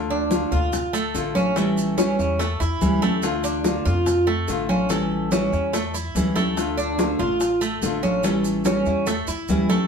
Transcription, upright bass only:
0, 0, Header, 1, 2, 480
1, 0, Start_track
1, 0, Key_signature, -1, "minor"
1, 0, Tempo, 417246
1, 1798, Time_signature, 4, 2, 24, 8
1, 11358, End_track
2, 0, Start_track
2, 0, Title_t, "Upright bass"
2, 0, Program_c, 0, 32
2, 0, Note_on_c, 0, 38, 83
2, 529, Note_off_c, 0, 38, 0
2, 594, Note_on_c, 0, 38, 83
2, 1270, Note_off_c, 0, 38, 0
2, 1318, Note_on_c, 0, 33, 78
2, 2448, Note_off_c, 0, 33, 0
2, 2521, Note_on_c, 0, 40, 93
2, 2966, Note_off_c, 0, 40, 0
2, 3002, Note_on_c, 0, 40, 72
2, 3223, Note_off_c, 0, 40, 0
2, 3240, Note_on_c, 0, 38, 75
2, 4370, Note_off_c, 0, 38, 0
2, 4437, Note_on_c, 0, 41, 96
2, 5113, Note_off_c, 0, 41, 0
2, 5164, Note_on_c, 0, 33, 83
2, 6292, Note_off_c, 0, 33, 0
2, 6357, Note_on_c, 0, 40, 91
2, 7032, Note_off_c, 0, 40, 0
2, 7075, Note_on_c, 0, 38, 82
2, 8207, Note_off_c, 0, 38, 0
2, 8274, Note_on_c, 0, 33, 90
2, 8950, Note_off_c, 0, 33, 0
2, 8989, Note_on_c, 0, 33, 76
2, 10122, Note_off_c, 0, 33, 0
2, 10192, Note_on_c, 0, 40, 89
2, 10639, Note_off_c, 0, 40, 0
2, 10671, Note_on_c, 0, 40, 77
2, 10896, Note_off_c, 0, 40, 0
2, 10915, Note_on_c, 0, 38, 76
2, 11358, Note_off_c, 0, 38, 0
2, 11358, End_track
0, 0, End_of_file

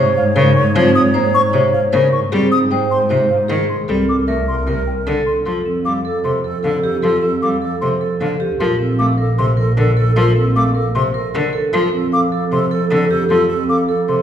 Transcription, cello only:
0, 0, Header, 1, 2, 480
1, 0, Start_track
1, 0, Tempo, 392157
1, 924, Time_signature, 4, 2, 24, 8
1, 17408, End_track
2, 0, Start_track
2, 0, Title_t, "Cello"
2, 0, Program_c, 0, 42
2, 0, Note_on_c, 0, 48, 97
2, 147, Note_off_c, 0, 48, 0
2, 442, Note_on_c, 0, 49, 121
2, 623, Note_off_c, 0, 49, 0
2, 926, Note_on_c, 0, 53, 118
2, 1105, Note_off_c, 0, 53, 0
2, 1400, Note_on_c, 0, 58, 86
2, 1582, Note_off_c, 0, 58, 0
2, 1879, Note_on_c, 0, 48, 99
2, 2061, Note_off_c, 0, 48, 0
2, 2363, Note_on_c, 0, 49, 104
2, 2543, Note_off_c, 0, 49, 0
2, 2844, Note_on_c, 0, 55, 117
2, 3024, Note_off_c, 0, 55, 0
2, 3311, Note_on_c, 0, 56, 82
2, 3496, Note_off_c, 0, 56, 0
2, 3798, Note_on_c, 0, 48, 93
2, 3981, Note_off_c, 0, 48, 0
2, 4278, Note_on_c, 0, 51, 100
2, 4461, Note_off_c, 0, 51, 0
2, 4762, Note_on_c, 0, 55, 94
2, 4943, Note_off_c, 0, 55, 0
2, 5236, Note_on_c, 0, 57, 65
2, 5419, Note_off_c, 0, 57, 0
2, 5716, Note_on_c, 0, 48, 78
2, 5899, Note_off_c, 0, 48, 0
2, 6206, Note_on_c, 0, 50, 96
2, 6385, Note_off_c, 0, 50, 0
2, 6686, Note_on_c, 0, 53, 77
2, 6865, Note_off_c, 0, 53, 0
2, 7169, Note_on_c, 0, 55, 59
2, 7347, Note_off_c, 0, 55, 0
2, 7646, Note_on_c, 0, 48, 74
2, 7825, Note_off_c, 0, 48, 0
2, 8130, Note_on_c, 0, 50, 88
2, 8308, Note_off_c, 0, 50, 0
2, 8608, Note_on_c, 0, 53, 85
2, 8786, Note_off_c, 0, 53, 0
2, 9092, Note_on_c, 0, 55, 66
2, 9269, Note_off_c, 0, 55, 0
2, 9576, Note_on_c, 0, 48, 80
2, 9751, Note_off_c, 0, 48, 0
2, 10048, Note_on_c, 0, 50, 88
2, 10227, Note_off_c, 0, 50, 0
2, 10533, Note_on_c, 0, 53, 105
2, 10710, Note_off_c, 0, 53, 0
2, 11005, Note_on_c, 0, 57, 71
2, 11185, Note_off_c, 0, 57, 0
2, 11488, Note_on_c, 0, 48, 87
2, 11667, Note_off_c, 0, 48, 0
2, 11962, Note_on_c, 0, 50, 98
2, 12143, Note_off_c, 0, 50, 0
2, 12441, Note_on_c, 0, 53, 108
2, 12622, Note_off_c, 0, 53, 0
2, 12930, Note_on_c, 0, 57, 72
2, 13108, Note_off_c, 0, 57, 0
2, 13407, Note_on_c, 0, 48, 88
2, 13586, Note_off_c, 0, 48, 0
2, 13892, Note_on_c, 0, 50, 106
2, 14069, Note_off_c, 0, 50, 0
2, 14361, Note_on_c, 0, 53, 108
2, 14542, Note_off_c, 0, 53, 0
2, 15322, Note_on_c, 0, 48, 81
2, 15503, Note_off_c, 0, 48, 0
2, 15798, Note_on_c, 0, 50, 102
2, 15981, Note_off_c, 0, 50, 0
2, 16284, Note_on_c, 0, 53, 95
2, 16464, Note_off_c, 0, 53, 0
2, 17244, Note_on_c, 0, 48, 74
2, 17408, Note_off_c, 0, 48, 0
2, 17408, End_track
0, 0, End_of_file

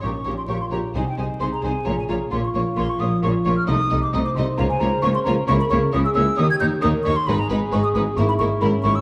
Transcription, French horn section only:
0, 0, Header, 1, 2, 480
1, 0, Start_track
1, 0, Tempo, 456274
1, 34, Time_signature, 4, 2, 24, 8
1, 4353, Tempo, 448430
1, 9569, End_track
2, 0, Start_track
2, 0, Title_t, "French horn section"
2, 0, Program_c, 0, 60
2, 20, Note_on_c, 0, 61, 64
2, 499, Note_off_c, 0, 61, 0
2, 501, Note_on_c, 0, 65, 67
2, 992, Note_off_c, 0, 65, 0
2, 997, Note_on_c, 0, 63, 59
2, 1475, Note_on_c, 0, 68, 76
2, 1481, Note_off_c, 0, 63, 0
2, 2416, Note_off_c, 0, 68, 0
2, 2441, Note_on_c, 0, 65, 76
2, 3848, Note_off_c, 0, 65, 0
2, 3866, Note_on_c, 0, 63, 75
2, 4338, Note_off_c, 0, 63, 0
2, 4362, Note_on_c, 0, 72, 90
2, 5772, Note_off_c, 0, 72, 0
2, 5780, Note_on_c, 0, 70, 94
2, 6263, Note_off_c, 0, 70, 0
2, 6278, Note_on_c, 0, 68, 86
2, 6750, Note_off_c, 0, 68, 0
2, 6768, Note_on_c, 0, 67, 90
2, 7234, Note_on_c, 0, 70, 97
2, 7245, Note_off_c, 0, 67, 0
2, 7558, Note_off_c, 0, 70, 0
2, 7703, Note_on_c, 0, 68, 103
2, 8648, Note_off_c, 0, 68, 0
2, 8670, Note_on_c, 0, 64, 88
2, 9138, Note_on_c, 0, 61, 92
2, 9150, Note_off_c, 0, 64, 0
2, 9569, Note_off_c, 0, 61, 0
2, 9569, End_track
0, 0, End_of_file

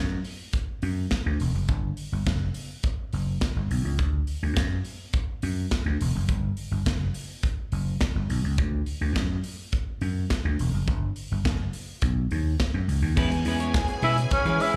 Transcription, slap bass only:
0, 0, Header, 1, 3, 480
1, 0, Start_track
1, 0, Key_signature, 2, "major"
1, 0, Tempo, 574163
1, 1413, Time_signature, 4, 2, 24, 8
1, 12342, End_track
2, 0, Start_track
2, 0, Title_t, "Slap bass"
2, 0, Program_c, 0, 36
2, 0, Note_on_c, 0, 42, 79
2, 159, Note_off_c, 0, 42, 0
2, 690, Note_on_c, 0, 42, 89
2, 881, Note_off_c, 0, 42, 0
2, 1054, Note_on_c, 0, 38, 86
2, 1148, Note_off_c, 0, 38, 0
2, 1174, Note_on_c, 0, 28, 88
2, 1268, Note_off_c, 0, 28, 0
2, 1293, Note_on_c, 0, 30, 89
2, 1388, Note_off_c, 0, 30, 0
2, 1413, Note_on_c, 0, 31, 93
2, 1603, Note_off_c, 0, 31, 0
2, 1775, Note_on_c, 0, 31, 84
2, 1869, Note_off_c, 0, 31, 0
2, 1894, Note_on_c, 0, 30, 89
2, 2084, Note_off_c, 0, 30, 0
2, 2618, Note_on_c, 0, 30, 85
2, 2806, Note_off_c, 0, 30, 0
2, 2976, Note_on_c, 0, 31, 73
2, 3071, Note_off_c, 0, 31, 0
2, 3097, Note_on_c, 0, 35, 78
2, 3191, Note_off_c, 0, 35, 0
2, 3218, Note_on_c, 0, 37, 84
2, 3335, Note_off_c, 0, 37, 0
2, 3335, Note_on_c, 0, 38, 93
2, 3525, Note_off_c, 0, 38, 0
2, 3700, Note_on_c, 0, 38, 68
2, 3793, Note_off_c, 0, 38, 0
2, 3817, Note_on_c, 0, 42, 76
2, 4006, Note_off_c, 0, 42, 0
2, 4539, Note_on_c, 0, 42, 86
2, 4727, Note_off_c, 0, 42, 0
2, 4896, Note_on_c, 0, 38, 82
2, 4991, Note_off_c, 0, 38, 0
2, 5024, Note_on_c, 0, 28, 85
2, 5116, Note_off_c, 0, 28, 0
2, 5145, Note_on_c, 0, 30, 89
2, 5237, Note_off_c, 0, 30, 0
2, 5257, Note_on_c, 0, 31, 93
2, 5447, Note_off_c, 0, 31, 0
2, 5612, Note_on_c, 0, 31, 86
2, 5709, Note_off_c, 0, 31, 0
2, 5736, Note_on_c, 0, 30, 83
2, 5926, Note_off_c, 0, 30, 0
2, 6455, Note_on_c, 0, 30, 84
2, 6645, Note_off_c, 0, 30, 0
2, 6815, Note_on_c, 0, 31, 81
2, 6911, Note_off_c, 0, 31, 0
2, 6933, Note_on_c, 0, 35, 84
2, 7030, Note_off_c, 0, 35, 0
2, 7057, Note_on_c, 0, 37, 88
2, 7152, Note_off_c, 0, 37, 0
2, 7175, Note_on_c, 0, 38, 87
2, 7366, Note_off_c, 0, 38, 0
2, 7534, Note_on_c, 0, 38, 86
2, 7630, Note_off_c, 0, 38, 0
2, 7656, Note_on_c, 0, 42, 87
2, 7846, Note_off_c, 0, 42, 0
2, 8372, Note_on_c, 0, 42, 91
2, 8563, Note_off_c, 0, 42, 0
2, 8735, Note_on_c, 0, 38, 80
2, 8831, Note_off_c, 0, 38, 0
2, 8858, Note_on_c, 0, 28, 86
2, 8953, Note_off_c, 0, 28, 0
2, 8977, Note_on_c, 0, 30, 92
2, 9072, Note_off_c, 0, 30, 0
2, 9094, Note_on_c, 0, 31, 92
2, 9284, Note_off_c, 0, 31, 0
2, 9459, Note_on_c, 0, 31, 82
2, 9553, Note_off_c, 0, 31, 0
2, 9573, Note_on_c, 0, 30, 82
2, 9764, Note_off_c, 0, 30, 0
2, 10049, Note_on_c, 0, 35, 98
2, 10241, Note_off_c, 0, 35, 0
2, 10294, Note_on_c, 0, 39, 82
2, 10483, Note_off_c, 0, 39, 0
2, 10652, Note_on_c, 0, 42, 94
2, 10747, Note_off_c, 0, 42, 0
2, 10767, Note_on_c, 0, 37, 86
2, 10864, Note_off_c, 0, 37, 0
2, 10885, Note_on_c, 0, 39, 92
2, 10983, Note_off_c, 0, 39, 0
2, 11010, Note_on_c, 0, 40, 89
2, 11200, Note_off_c, 0, 40, 0
2, 11244, Note_on_c, 0, 40, 107
2, 11530, Note_off_c, 0, 40, 0
2, 11724, Note_on_c, 0, 47, 88
2, 11915, Note_off_c, 0, 47, 0
2, 12083, Note_on_c, 0, 52, 88
2, 12179, Note_off_c, 0, 52, 0
2, 12342, End_track
3, 0, Start_track
3, 0, Title_t, "Muted slap bass strokes"
3, 11966, Note_on_c, 9, 29, 51
3, 12049, Note_off_c, 9, 29, 0
3, 12342, End_track
0, 0, End_of_file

